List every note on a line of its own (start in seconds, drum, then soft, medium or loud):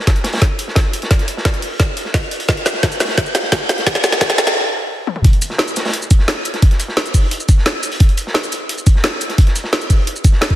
0.07 kick medium
0.07 snare loud
0.07 snare medium
0.07 closed hi-hat medium
0.16 closed hi-hat soft
0.24 snare loud
0.24 closed hi-hat medium
0.33 snare medium
0.33 closed hi-hat medium
0.37 snare medium
0.37 closed hi-hat medium
0.41 kick loud
0.41 snare medium
0.41 closed hi-hat medium
0.41 closed hi-hat loud
0.58 closed hi-hat medium
0.68 snare soft
0.76 kick loud
0.76 snare loud
0.76 snare medium
0.76 closed hi-hat medium
0.93 closed hi-hat medium
1.02 snare medium
1.02 closed hi-hat soft
1.11 kick loud
1.11 snare medium
1.11 closed hi-hat medium
1.19 snare soft
1.19 closed hi-hat soft
1.28 closed hi-hat medium
1.37 snare medium
1.45 kick medium
1.45 snare medium
1.45 snare loud
1.45 closed hi-hat medium
1.54 closed hi-hat soft
1.62 closed hi-hat medium
1.62 open hi-hat medium
1.79 kick loud
1.79 snare medium
1.79 closed hi-hat medium
1.79 closed hi-hat loud
1.97 closed hi-hat medium
2.05 snare soft
2.14 kick loud
2.14 snare medium
2.14 closed hi-hat medium
2.22 closed hi-hat soft
2.31 closed hi-hat medium
2.40 closed hi-hat medium
2.40 closed hi-hat soft
2.48 kick loud
2.48 snare medium
2.48 closed hi-hat loud
2.48 closed hi-hat medium
2.57 closed hi-hat soft
2.65 snare medium
2.65 closed hi-hat medium
2.65 shaker medium
2.74 snare soft
2.83 kick loud
2.83 snare loud
2.83 snare medium
2.83 closed hi-hat medium
2.83 closed hi-hat loud
2.92 closed hi-hat soft
2.92 shaker soft
3.00 snare loud
3.00 snare medium
3.00 closed hi-hat medium
3.00 shaker medium
3.05 snare loud
3.05 closed hi-hat medium
3.08 snare medium
3.08 closed hi-hat medium
3.18 kick loud
3.18 snare medium
3.18 closed hi-hat loud
3.26 shaker soft
3.35 snare medium
3.35 closed hi-hat medium
3.35 shaker medium
3.43 snare soft
3.52 kick loud
3.52 snare medium
3.52 snare loud
3.52 closed hi-hat loud
3.52 closed hi-hat medium
3.69 snare medium
3.69 closed hi-hat medium
3.69 shaker medium
3.78 snare medium
3.78 closed hi-hat soft
3.87 kick loud
3.87 snare medium
3.87 closed hi-hat medium
3.95 snare medium
3.95 snare soft
3.95 closed hi-hat soft
4.04 snare medium
4.04 closed hi-hat medium
4.04 shaker medium
4.12 snare medium
4.21 kick loud
4.21 snare loud
4.21 closed hi-hat medium
4.21 closed hi-hat loud
4.30 snare medium
4.30 closed hi-hat soft
4.30 shaker soft
4.38 snare loud
4.38 closed hi-hat medium
4.38 open hi-hat medium
4.38 shaker medium
4.47 snare medium
5.07 high tom medium
5.16 mid tom medium
5.24 kick loud
5.24 closed hi-hat loud
5.24 closed hi-hat medium
5.33 closed hi-hat soft
5.42 closed hi-hat medium
5.42 shaker medium
5.50 snare soft
5.58 snare loud
5.58 closed hi-hat loud
5.58 closed hi-hat medium
5.68 closed hi-hat soft
5.68 shaker soft
5.76 snare loud
5.76 closed hi-hat medium
5.76 shaker medium
5.85 snare loud
5.85 closed hi-hat medium
5.89 snare medium
5.89 closed hi-hat medium
5.93 closed hi-hat medium
5.93 closed hi-hat loud
6.02 shaker soft
6.11 kick loud
6.11 closed hi-hat medium
6.11 shaker medium
6.19 snare soft
6.28 snare loud
6.28 closed hi-hat loud
6.28 closed hi-hat medium
6.45 closed hi-hat medium
6.45 shaker medium
6.54 snare medium
6.54 closed hi-hat soft
6.62 kick loud
6.62 closed hi-hat medium
6.71 snare soft
6.71 closed hi-hat soft
6.79 closed hi-hat medium
6.79 shaker medium
6.88 snare soft
6.97 snare loud
6.97 closed hi-hat loud
6.97 closed hi-hat medium
7.06 closed hi-hat soft
7.06 shaker soft
7.14 kick medium
7.14 closed hi-hat medium
7.14 open hi-hat medium
7.14 shaker medium
7.31 closed hi-hat medium
7.31 closed hi-hat loud
7.40 shaker soft
7.48 kick loud
7.48 closed hi-hat medium
7.48 shaker medium
7.58 snare soft
7.66 snare loud
7.66 closed hi-hat medium
7.66 closed hi-hat loud
7.75 closed hi-hat soft
7.83 closed hi-hat medium
7.83 shaker medium
7.92 closed hi-hat soft
7.92 closed hi-hat medium
8.00 kick loud
8.00 closed hi-hat medium
8.00 closed hi-hat loud
8.09 closed hi-hat soft
8.17 closed hi-hat medium
8.17 shaker medium
8.27 snare soft
8.34 snare loud
8.34 closed hi-hat medium
8.43 closed hi-hat soft
8.43 shaker soft
8.52 closed hi-hat medium
8.52 shaker medium
8.69 closed hi-hat medium
8.69 closed hi-hat loud
8.78 shaker soft
8.86 kick loud
8.86 closed hi-hat medium
8.86 shaker medium
8.96 snare soft
9.04 snare loud
9.04 closed hi-hat medium
9.21 closed hi-hat medium
9.21 shaker medium
9.29 snare soft
9.29 closed hi-hat soft
9.38 kick loud
9.38 closed hi-hat medium
9.38 closed hi-hat loud
9.47 snare soft
9.47 closed hi-hat soft
9.56 closed hi-hat medium
9.56 shaker medium
9.64 snare medium
9.72 snare loud
9.72 closed hi-hat medium
9.81 closed hi-hat soft
9.81 shaker soft
9.90 kick medium
9.90 closed hi-hat medium
9.90 open hi-hat medium
9.90 shaker medium
10.07 closed hi-hat medium
10.16 shaker soft
10.24 kick loud
10.24 closed hi-hat medium
10.24 shaker medium
10.32 snare soft
10.41 snare loud
10.41 closed hi-hat medium
10.41 closed hi-hat loud
10.50 kick medium
10.50 closed hi-hat soft